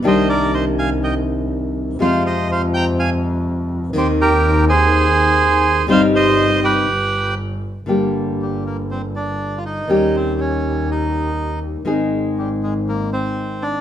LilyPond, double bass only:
\new Staff \with { instrumentName = "Double bass" } { \clef bass \time 4/4 \key c \minor \tempo 4 = 121 c,1 | f,1 | ees,1 | g,,2 g,,2 |
\key ees \lydian g,,1 | ees,1 | aes,,1 | }